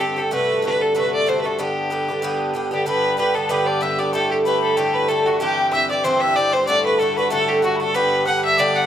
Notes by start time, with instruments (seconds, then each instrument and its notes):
Already playing: harmonium G2 D3
0.00 bouzouki G2 D3 C4 G4, fiddle G4
0.16 bouzouki D3 C4 G4, fiddle A4
0.31 bouzouki C3 D3 A3 F#4, fiddle B4
0.62 bouzouki C3 D3 A3 F#4, fiddle B4
0.81 fiddle A4
0.95 bouzouki C3 D3 A3 F#4, fiddle B4
1.14 fiddle D5
1.26 bouzouki C3 D3 A3 F#4, fiddle C5
1.40 bouzouki F#4, fiddle B4
1.45 bouzouki D3 A3, fiddle A4
1.59 bouzouki G2 D3 B3 G4, fiddle G4
1.90 bouzouki G2 D3 B3 G4
2.08 bouzouki D3 B3 G4
2.22 bouzouki G2 D3 B3 G4
2.54 bouzouki G2 D3 B3 G4
2.71 bouzouki D3 B3 G4, fiddle G4, tin whistle G5
2.86 bouzouki G2 D3 B3 G4, harmonium G2 D3, fiddle B4, tin whistle B5
3.17 bouzouki G2 D3 B3 G4, fiddle B4, tin whistle B5
3.34 bouzouki D3 B3 G4, fiddle A4, tin whistle A5
3.49 bouzouki G2 D3 B3 G4, fiddle B4, tin whistle B5
3.66 fiddle D5, tin whistle D6
3.81 bouzouki G2 D3 B3 G4, fiddle E5, tin whistle E6
3.99 bouzouki D3 B3 G4, fiddle D5, tin whistle D6
4.13 bouzouki A2 D3 A3 G4, fiddle A4, tin whistle A5
4.30 fiddle G4, tin whistle G5
4.45 bouzouki A2 D3 A3 G4, fiddle B4, tin whistle B5
4.63 fiddle A4
4.76 bouzouki A2 D3 A3 G4, fiddle G4, tin whistle G5
4.94 fiddle B4, tin whistle B5
5.04 tin whistle B5
5.08 bouzouki A2 D3 A3 G4, fiddle A4, tin whistle A5
5.25 bouzouki D3 A3 G4, fiddle F#4, tin whistle F#5
5.40 bouzouki G2 E3 C4 G4, fiddle G4, tin whistle G5
5.72 bouzouki G2 E3 C4 G4, fiddle E5, tin whistle E6
5.89 bouzouki E3 C4 G4, fiddle D5, tin whistle D6
6.04 bouzouki G2 E3 C4 G4, fiddle C5, tin whistle C6
6.20 fiddle E5, tin whistle E6
6.35 bouzouki G2 E3 C4 G4, fiddle D5, tin whistle D6
6.53 bouzouki E3 C4 G4, fiddle C5, tin whistle C6
6.66 bouzouki A2 D3 A3 F#4, fiddle D5, tin whistle D6
6.85 fiddle B4, tin whistle B5
6.98 bouzouki A2 D3 A3, fiddle A4, tin whistle A5
7.02 bouzouki F#4
7.16 bouzouki D3 A3 F#4, fiddle B4, tin whistle B5
7.30 bouzouki A2 D3 A3 F#4, fiddle A4, tin whistle A5
7.48 fiddle G4, tin whistle G5
7.62 bouzouki A2 D3 A3 F#4, fiddle F#4, tin whistle F#5
7.76 tin whistle B5
7.80 bouzouki D3 A3 F#4, fiddle A4, tin whistle A5
7.94 bouzouki G2 D3 B3 G4, harmonium G2 D3, fiddle B4, tin whistle B5
8.25 bouzouki G2 D3 B3 G4, fiddle F#5, tin whistle F#6
8.44 fiddle E5, tin whistle E6
8.57 bouzouki G2 D3 B3 G4, fiddle D5, tin whistle D6
8.75 fiddle F#5, tin whistle F#6